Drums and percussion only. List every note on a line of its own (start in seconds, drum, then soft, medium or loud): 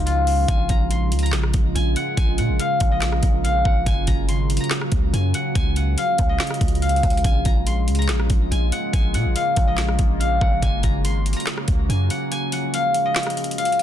0.07 closed hi-hat medium
0.27 open hi-hat medium
0.48 kick loud
0.48 closed hi-hat medium
0.69 kick loud
0.69 closed hi-hat medium
0.91 closed hi-hat medium
1.12 closed hi-hat medium
1.19 closed hi-hat medium
1.26 closed hi-hat soft
1.32 snare loud
1.32 clap loud
1.32 closed hi-hat medium
1.43 cross-stick loud
1.54 kick loud
1.54 closed hi-hat medium
1.76 closed hi-hat medium
1.96 closed hi-hat medium
2.17 kick loud
2.17 closed hi-hat medium
2.38 closed hi-hat medium
2.60 closed hi-hat medium
2.80 kick loud
2.80 closed hi-hat medium
3.01 snare loud
3.01 clap loud
3.01 closed hi-hat medium
3.12 cross-stick loud
3.23 kick loud
3.23 closed hi-hat medium
3.45 closed hi-hat medium
3.65 kick loud
3.86 kick loud
3.86 closed hi-hat medium
4.07 kick loud
4.07 closed hi-hat medium
4.29 closed hi-hat medium
4.50 closed hi-hat medium
4.57 closed hi-hat medium
4.64 closed hi-hat soft
4.70 snare loud
4.70 clap loud
4.70 closed hi-hat medium
4.81 cross-stick loud
4.92 kick loud
4.92 closed hi-hat medium
5.14 closed hi-hat medium
5.34 closed hi-hat medium
5.55 kick loud
5.55 closed hi-hat medium
5.76 closed hi-hat medium
5.98 closed hi-hat medium
6.18 kick loud
6.18 closed hi-hat medium
6.39 snare loud
6.39 clap medium
6.39 closed hi-hat medium
6.47 cross-stick loud
6.47 closed hi-hat medium
6.54 closed hi-hat medium
6.61 kick loud
6.61 closed hi-hat medium
6.68 closed hi-hat medium
6.75 closed hi-hat soft
6.82 closed hi-hat medium
6.89 closed hi-hat medium
6.96 closed hi-hat medium
7.03 kick loud
7.03 closed hi-hat medium
7.10 closed hi-hat medium
7.17 closed hi-hat medium
7.24 kick loud
7.24 closed hi-hat medium
7.45 kick loud
7.45 closed hi-hat medium
7.67 closed hi-hat medium
7.88 closed hi-hat medium
7.95 closed hi-hat medium
8.02 closed hi-hat soft
8.08 snare loud
8.08 clap loud
8.08 closed hi-hat medium
8.20 cross-stick loud
8.30 kick loud
8.30 closed hi-hat medium
8.52 closed hi-hat medium
8.72 closed hi-hat medium
8.93 kick loud
8.93 closed hi-hat medium
9.14 closed hi-hat medium
9.36 closed hi-hat medium
9.56 kick loud
9.56 closed hi-hat medium
9.77 snare loud
9.77 clap loud
9.77 closed hi-hat medium
9.88 cross-stick loud
9.99 kick medium
9.99 closed hi-hat medium
10.21 closed hi-hat medium
10.41 kick loud
10.62 kick loud
10.62 closed hi-hat medium
10.83 kick loud
10.83 closed hi-hat medium
11.05 closed hi-hat medium
11.26 closed hi-hat medium
11.33 closed hi-hat medium
11.40 closed hi-hat soft
11.46 snare loud
11.46 clap loud
11.46 closed hi-hat medium
11.58 cross-stick loud
11.68 kick medium
11.68 closed hi-hat medium
11.90 closed hi-hat medium
12.10 closed hi-hat medium
12.32 closed hi-hat medium
12.52 closed hi-hat medium
12.74 closed hi-hat medium
12.94 closed hi-hat medium
13.15 snare loud
13.15 clap medium
13.15 closed hi-hat medium
13.23 cross-stick loud
13.23 closed hi-hat medium
13.30 closed hi-hat medium
13.37 closed hi-hat medium
13.44 closed hi-hat medium
13.51 closed hi-hat soft
13.58 closed hi-hat medium
13.65 closed hi-hat medium
13.72 closed hi-hat medium
13.79 closed hi-hat medium